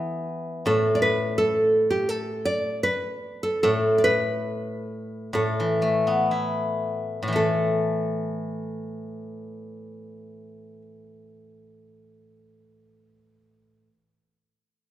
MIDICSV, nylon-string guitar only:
0, 0, Header, 1, 2, 480
1, 0, Start_track
1, 0, Tempo, 711744
1, 457, Time_signature, 4, 2, 24, 8
1, 937, Tempo, 739827
1, 1897, Tempo, 804290
1, 2857, Tempo, 883652
1, 3337, Tempo, 964630
1, 3817, Tempo, 1034483
1, 5737, Tempo, 1048951
1, 7771, End_track
2, 0, Start_track
2, 0, Title_t, "Nylon-string guitar"
2, 0, Program_c, 0, 24
2, 0, Note_on_c, 0, 64, 72
2, 191, Note_off_c, 0, 64, 0
2, 449, Note_on_c, 0, 69, 84
2, 638, Note_off_c, 0, 69, 0
2, 641, Note_on_c, 0, 74, 70
2, 685, Note_off_c, 0, 74, 0
2, 687, Note_on_c, 0, 71, 79
2, 930, Note_on_c, 0, 69, 98
2, 940, Note_off_c, 0, 71, 0
2, 1262, Note_off_c, 0, 69, 0
2, 1271, Note_on_c, 0, 67, 79
2, 1390, Note_off_c, 0, 67, 0
2, 1390, Note_on_c, 0, 69, 91
2, 1628, Note_on_c, 0, 74, 94
2, 1648, Note_off_c, 0, 69, 0
2, 1871, Note_off_c, 0, 74, 0
2, 1873, Note_on_c, 0, 71, 90
2, 2232, Note_on_c, 0, 69, 81
2, 2246, Note_off_c, 0, 71, 0
2, 2344, Note_off_c, 0, 69, 0
2, 2351, Note_on_c, 0, 69, 85
2, 2560, Note_off_c, 0, 69, 0
2, 2562, Note_on_c, 0, 74, 67
2, 2593, Note_off_c, 0, 74, 0
2, 2596, Note_on_c, 0, 71, 86
2, 3310, Note_off_c, 0, 71, 0
2, 3330, Note_on_c, 0, 69, 70
2, 4033, Note_off_c, 0, 69, 0
2, 4295, Note_on_c, 0, 69, 69
2, 5898, Note_off_c, 0, 69, 0
2, 7771, End_track
0, 0, End_of_file